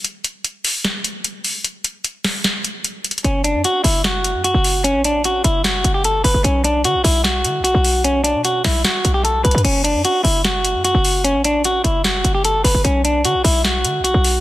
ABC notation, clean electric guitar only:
X:1
M:4/4
L:1/16
Q:1/4=150
K:F#m
V:1 name="Clean electric guitar"
z16 | z16 | C2 D2 F2 E2 F4 F4 | C2 D2 F2 E2 F3 =G A2 B2 |
C2 D2 F2 E2 F4 F4 | C2 D2 F2 E2 F3 =G A2 B2 | C2 D2 F2 E2 F4 F4 | C2 D2 F2 E2 F3 =G A2 B2 |
C2 D2 F2 E2 F4 F4 |]